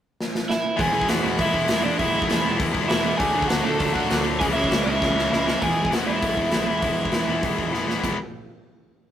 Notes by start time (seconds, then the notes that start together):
0.20 snare
0.35 snare
0.49 E4 E5, snare
0.76 E1 E2 B2 E3 G#3 B3 E4 G#4, kick, open hi-hat
0.81 G#5
0.93 E1 E2 B2 E3 G#3 B3 E4
1.01 kick
1.08 E1 E2 B2 E3 G#3 B3 E4 F#4 F#5, snare, open hi-hat
1.22 E1 E2 B2 E3 G#3 B3 E4
1.37 E1 E2 B2 E3 G#3 B3 E4 E5, kick, open hi-hat
1.52 E1 E2 B2 E3 G#3 B3 E4, kick
1.68 E1 E2 B2 E3 G#3 B3 E4, snare, open hi-hat
1.84 E2 B2 E3 G#3 B3 D4 E4 D5
1.99 E1 E2 B2 E3 G#3 B3 E4 E5, kick, open hi-hat
2.12 E1 B2 E3 G#3 B3 E4
2.16 E2
2.22 kick
2.27 E1 E2 B2 E3 G#3 B3 E4, snare, open hi-hat
2.42 E2 B2 E3 G#3 B3 E4
2.46 E1
2.57 E1 E2 B2 E3 G#3 B3 E4, kick, open hi-hat
2.73 E1 E2 B2 E3 G#3 B3 E4, kick
2.87 E1 E2 B2 E3 G#3 B3 E4 E5, snare, open hi-hat
3.03 E2 B2 E3 G#3 B3 E4
3.17 D2 D3 F#3 A3 D4 G#4 G#5, kick, open hi-hat
3.33 D2 D3 F#3 A3 D4
3.42 kick
3.47 D2 D3 F#3 A3 D4 F#4 F#5, snare, open hi-hat
3.64 D2 D3 F#3 A3 D4 A4 A5
3.79 D2 D3 F#3 A3 D4, kick, open hi-hat
3.93 D2 D3 F#3 A3 D4 F#4 F#5, kick
4.09 D2 D3 F#3 A3 D4, snare, open hi-hat
4.23 D3 F#3 A3 D4
4.40 C#2 C#3 E3 G#3 C#4 G#4 G#5, kick, open hi-hat
4.53 C#2 C#3 E3 G#3 C#4 E4 E5
4.64 kick
4.71 C#2 C#3 E3 G#3 C#4, snare, open hi-hat
4.84 C#2 C#3 E3 G#3 C#4 E4 E5
5.01 C#2 C#3 E3 G#3 C#4, kick, snare
5.15 C#2 C#3 E3 G#3 C#4, snare
5.31 C#2 C#3 E3 G#3 C#4 E4 E5, snare
5.46 C#3 E3 G#3 C#4, snare
5.62 E1 E2 B2 E3 G#3 B3 E4 G#4 G#5, kick, open hi-hat
5.78 E1
5.85 G#4 G#5, kick
5.90 E1 E2 B2 E3 G#3 B3 E4 F#4 F#5, snare, open hi-hat
5.94 E3
6.06 E1 E2 B2 E3 G#3 B3 E4 E5
6.21 B1 E2 B2 E3 G#3 B3 E4, kick, open hi-hat
6.37 E1, kick
6.51 B1 E2 B2 E3 G#3 B3 E4, snare, open hi-hat
6.66 E1 E2 B2 E3 G#3 B3 E4
6.82 E1 E2 B2 E3 G#3 B3 E4, kick, open hi-hat
6.98 E1
7.05 kick
7.12 E1 E2 B2 E3 G#3 B3 E4, snare, open hi-hat
7.27 E1 E2 B2 E3 G#3 B3 E4
7.43 E1 E2 B2 E3 G#3 B3 E4, kick, open hi-hat
7.58 E1, kick
7.72 E1 E2 B2 E3 G#3 B3 E4, snare
7.88 E1 E2 B2 E3 G#3 B3 E4, snare
8.02 E1 E2 B2 E3 G#3 B3 E4, kick, crash